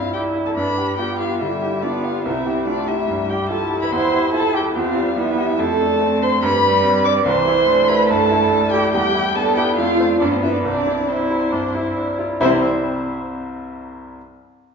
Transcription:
Already playing: C2 G2 C4 D4 E4 F4 F5
0.13 D4 E4 G4 G5
0.35 E4
0.46 A4 A5
0.56 G2 D4 B4 B5
0.78 G4
0.97 B3 F4 G4 G5
1.19 F4 G4 F5
1.41 D3 G3 E4 E5
1.62 G4
1.82 B3 D4 F4 D5
2.03 F4 G4 F5
2.24 C2 C4 E4 E5
2.46 G4
2.66 A3 D4 F4 D5
2.87 E4 G4 E5
3.08 G2 G3
3.29 G4 G5
3.49 E4 F4 A4 A5
3.70 G4
3.82 B4 B5
3.92 E2 C5 C6
4.13 G4
4.33 F4 A4 A5
4.54 G4 G5
4.74 E2 C4 F4 F5
4.96 G3
5.16 F3 B3 E4 E5
5.38 G4
5.59 F2 A3 A4 A5
5.80 D4
6.00 C4
6.22 D4 C5 C6
6.42 G2 G3 B4 B5
6.63 D4
6.83 C4
7.04 D4 D5 D6
7.25 C2 E3 C5 C6
7.47 E4
7.67 A3 D4
7.88 E4 B4 B5
8.09 G2 A4 A5
8.31 E4
8.53 D4
8.71 E4 G4 G5
8.93 E2 G3 G4 G5
9.14 E4
9.35 B3 D4 A4 A5
9.55 E4 G4 G5
9.76 F2 A3 F4 F5
9.99 D4 C5
10.19 G2 B3 D4 D5
10.31 C4 C5
10.42 E4 F4 B4 E5
10.54 D4 D5
10.63 C2 C4 D4 D5
10.87 E4
11.07 C4 D4 E4 C5
11.30 E4
11.52 G2 D4
11.74 E4
11.97 D4
12.18 E4 F4
12.40 C2 C3 G3 C4 E4 C5 E5

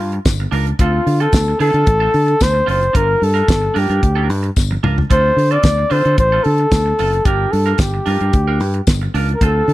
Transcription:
Already playing: F4
0.00 G2
0.12 muted clean electric guitar stroke, closed hi-hat
0.25 G1, kick, snare, closed hi-hat, tambourine
0.40 muted clean electric guitar stroke
0.51 C#2 D4 F4 A#4, open hi-hat
0.67 muted clean electric guitar stroke, closed hi-hat
0.79 D2 C4 F4 A4, kick, closed hi-hat
1.06 D3, muted clean electric guitar stroke, open hi-hat
1.20 C4 F4 A4, closed hi-hat
1.32 D2, kick, snare, closed hi-hat, tambourine
1.48 muted clean electric guitar stroke
1.59 D3 C4 F4 A4, open hi-hat
1.74 D3 C4 F4 A4, closed hi-hat
1.86 A1, muted clean electric guitar stroke, kick, closed hi-hat
2.00 C4 F4 A4
2.13 D3, muted clean electric guitar stroke, open hi-hat
2.27 muted clean electric guitar stroke, closed hi-hat
2.41 D2 C5, kick, snare, closed hi-hat, tambourine
2.54 muted clean electric guitar stroke
2.66 F#1 C4 F4 A4 C5, open hi-hat
2.81 muted clean electric guitar stroke, closed hi-hat
2.93 G1 D4 F4 A#4, kick, closed hi-hat
3.20 G2 A4, muted clean electric guitar stroke, open hi-hat
3.34 D4 F4 A#4, closed hi-hat
3.48 G1, muted clean electric guitar stroke, kick, snare, closed hi-hat, tambourine
3.62 muted clean electric guitar stroke
3.74 G2 D4 F4 A#4, open hi-hat
3.79 G4
3.89 G2 D4 F4 A#4, closed hi-hat
4.01 D2, muted clean electric guitar stroke, kick, closed hi-hat
4.15 D4 F4 A#4
4.29 G2, muted clean electric guitar stroke, open hi-hat
4.43 muted clean electric guitar stroke, closed hi-hat
4.56 G1, kick, snare, tambourine
4.71 muted clean electric guitar stroke, high tom
4.83 C#2 D4 F4 A#4, mid tom
4.98 muted clean electric guitar stroke, floor tom
5.10 D2 C4 F4 A4 C5, kick, closed hi-hat
5.37 D3, muted clean electric guitar stroke, open hi-hat
5.51 C4 F4 A4 D5, closed hi-hat
5.63 D2, muted clean electric guitar stroke, kick, snare, closed hi-hat, tambourine
5.78 muted clean electric guitar stroke
5.90 D3 C4 F4 A4 C5, open hi-hat
6.05 D3 C4 F4 A4, closed hi-hat
6.18 A1 C5, muted clean electric guitar stroke, kick, closed hi-hat
6.32 C4 F4 A4
6.44 D3 A4, muted clean electric guitar stroke, open hi-hat
6.58 muted clean electric guitar stroke, closed hi-hat
6.71 D2, kick, snare, closed hi-hat, tambourine
6.86 muted clean electric guitar stroke
6.99 F#1 C4 F4 A4, open hi-hat
7.13 muted clean electric guitar stroke, closed hi-hat
7.25 G1 D4 F4 G4 A#4, kick, closed hi-hat
7.52 G2 A4, muted clean electric guitar stroke, open hi-hat
7.66 D4 F4 A#4, closed hi-hat
7.74 A4, closed hi-hat
7.79 G1 G4, kick, snare, tambourine
7.94 muted clean electric guitar stroke
8.06 G2 D4 F4 A#4, open hi-hat
8.21 G2 D4 F4 A#4, closed hi-hat
8.33 D2, muted clean electric guitar stroke, kick, closed hi-hat
8.47 D4 F4 A#4
8.60 G2, muted clean electric guitar stroke, open hi-hat
8.74 muted clean electric guitar stroke, closed hi-hat
8.87 G1, kick, snare, closed hi-hat, tambourine
9.02 muted clean electric guitar stroke
9.14 C#2 D4 F4 A#4, open hi-hat
9.29 muted clean electric guitar stroke, closed hi-hat
9.35 A#4
9.41 D2 C4 F4 A4, kick, closed hi-hat
9.68 D3, muted clean electric guitar stroke, open hi-hat

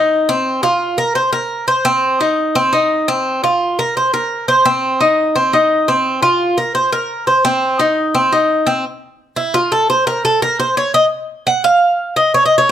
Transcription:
Already playing: D#4
0.29 C4
0.63 F4
0.98 A#4
1.15 C5
1.33 A#4
1.68 C5
1.85 C4
2.21 D#4
2.55 C4
2.73 D#4
3.08 C4
3.44 F4
3.79 A#4
3.97 C5
4.14 A#4
4.48 C5
4.65 C4
5.01 D#4
5.36 C4
5.53 D#4
5.88 C4
6.23 F4
6.58 A#4
6.75 C5
6.92 A#4
7.27 C5
7.45 C4
7.80 D#4
8.15 C4
8.33 D#4
8.67 C4
9.36 E4
9.54 F4
9.72 A4
9.90 C5
10.07 A#4
10.25 A4
10.42 A#4
10.60 C5
10.77 C#5
10.94 D#5
11.47 F#5
11.64 F5
12.16 D#5
12.34 C#5
12.46 D#5
12.58 C#5

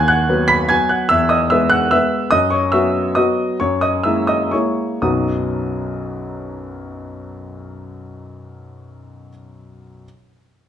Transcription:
Already playing: D#2 G#5 G#6
0.08 F#5 F#6
0.29 F#3 B3 B4
0.48 B5 B6
0.69 F#3 B3 B4 G#5 G#6
0.89 F#5 F#6
1.09 E2 E5 E6
1.29 D#5 D#6
1.50 G#3 B3 B4 E5 E6
1.70 F#5 F#6
1.91 G#3 B3 B4 E5 E6
2.31 F#2 D#5 D#6
2.50 C#5 C#6
2.72 F#3 B3 F#4 E5 E6
3.15 F#3 B3 F#4 D#5 D#6
3.60 F#2 C#5 C#6
3.81 D#5 D#6
4.04 G#3 A#3 E4 E5 E6
4.27 D#5 D#6
4.51 G#3 A#3 E4 C#5 C#6
5.02 B1 F#2 F#3 B3 D#4 F#4 D#6

